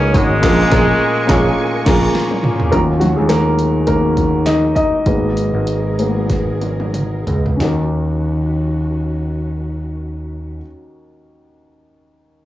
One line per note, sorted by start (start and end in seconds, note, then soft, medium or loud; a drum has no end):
0.00 0.12 C#2 loud
0.00 0.45 F#3 medium
0.00 0.13 A#3 loud
0.00 0.14 C#4 loud
0.00 0.18 C#4 loud
0.00 0.14 D#4 medium
0.00 0.15 F#4 medium
0.00 0.43 G#4 loud
0.00 0.44 A#4 loud
0.00 0.41 C#5 medium
0.00 0.41 F#5 medium
0.00 0.41 D#6 medium
0.13 0.41 G#1 loud
0.13 2.16 G#3 loud
0.13 0.37 A#3 medium
0.13 0.37 C#4 medium
0.13 0.37 D#4 medium
0.13 0.38 F#4 medium
0.13 0.38 C#5 medium
0.13 kick loud
0.13 open hi-hat medium
0.42 0.63 A#1 loud
0.42 0.63 A#2 loud
0.42 0.63 F3 loud
0.42 0.62 A#3 medium
0.42 0.63 C#4 loud
0.42 0.63 F4 loud
0.42 0.63 G#4 loud
0.42 2.70 A#4 medium
0.42 0.63 A#4 loud
0.42 2.70 G#5 medium
0.42 2.70 C#6 medium
0.42 kick loud
0.42 snare loud
0.42 crash medium
0.70 0.92 A#1 loud
0.70 0.91 A#3 loud
0.70 0.91 C#4 loud
0.70 0.91 F4 medium
0.70 0.92 G#4 loud
0.70 0.92 A#4 medium
0.70 kick loud
0.70 snare medium
1.27 1.49 A#1 loud
1.27 1.48 A#3 loud
1.27 1.48 C#4 loud
1.27 1.48 F4 loud
1.27 1.49 G#4 loud
1.27 1.49 C#5 loud
1.27 kick loud
1.27 snare loud
1.86 2.06 A#1 loud
1.86 2.06 A#3 loud
1.86 2.06 C#4 loud
1.86 2.06 F4 loud
1.86 2.07 G#4 loud
1.86 2.07 A#4 medium
1.86 kick loud
1.86 snare loud
1.86 crash medium
2.15 snare medium
2.31 high tom medium
2.44 mid tom loud
2.60 floor tom loud
2.72 3.14 D#2 medium
2.72 5.04 D#3 medium
2.72 3.00 F#3 soft
2.72 5.04 F#3 medium
2.72 2.80 A#3 medium
2.72 3.12 C#4 soft
2.72 5.04 C#4 medium
2.72 3.12 F4 medium
2.72 2.78 A#4 medium
2.72 kick loud
2.72 closed hi-hat medium
3.00 3.16 F#3 medium
3.00 3.17 F#4 medium
3.00 snare soft
3.00 closed hi-hat medium
3.16 4.72 D#2 medium
3.16 3.29 G#3 medium
3.16 3.29 G#4 medium
3.29 3.84 A#3 medium
3.29 3.85 A#4 medium
3.29 snare loud
3.29 clap medium
3.29 closed hi-hat medium
3.59 closed hi-hat medium
3.87 4.43 A#3 medium
3.87 4.48 A#4 medium
3.87 kick medium
3.87 closed hi-hat medium
4.17 kick medium
4.17 closed hi-hat medium
4.46 4.75 D#4 medium
4.46 4.74 D#5 medium
4.46 snare medium
4.46 clap medium
4.46 closed hi-hat medium
4.75 6.91 D#4 medium
4.75 6.90 D#5 medium
4.75 kick medium
4.75 closed hi-hat medium
5.06 5.50 G#1 medium
5.06 7.58 B2 medium
5.06 5.94 G#3 soft
5.06 5.95 A#3 soft
5.06 5.95 B3 soft
5.06 7.58 G#4 medium
5.06 7.58 A#4 medium
5.06 kick medium
5.06 closed hi-hat medium
5.37 closed hi-hat medium
5.54 7.23 G#1 medium
5.67 closed hi-hat medium
5.99 6.27 G#3 soft
5.99 6.27 A#3 soft
5.99 6.27 B3 soft
5.99 closed hi-hat medium
6.30 kick medium
6.30 snare soft
6.30 closed hi-hat medium
6.61 closed hi-hat soft
6.61 high tom medium
6.80 high tom soft
6.94 closed hi-hat medium
6.94 mid tom medium
7.27 7.58 C#2 medium
7.27 closed hi-hat soft
7.27 floor tom medium
7.46 floor tom medium
7.56 10.61 D#2 medium
7.56 10.61 D#3 soft
7.56 10.57 C#4 medium
7.56 10.61 C#4 soft
7.56 10.60 D#4 medium
7.56 10.61 F#4 medium
7.56 snare medium
7.56 floor tom medium
7.62 10.62 F#4 medium
7.62 10.65 A#4 medium